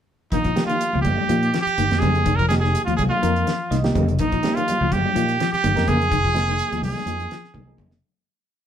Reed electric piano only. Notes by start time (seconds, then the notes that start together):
0.56 F3 A#3 D#4 G4
1.29 F3 A#3 D#4 G4
1.91 F3 A#3 D#4 G4
2.50 F3 A#3 D#4 G4
3.22 F3 A#3 D#4 A#4
3.71 D#5
3.84 F3 A#3 D#4 G4
4.43 F3 A#3 D#4 G4
5.16 F3 A#3 D#4 G4
5.76 F3 A#3 D#4 A#4
6.34 F3 A#3 D#4 G#4
7.06 F3 A#3 D#4 G#4
7.67 F3 A#3 D#4 G#4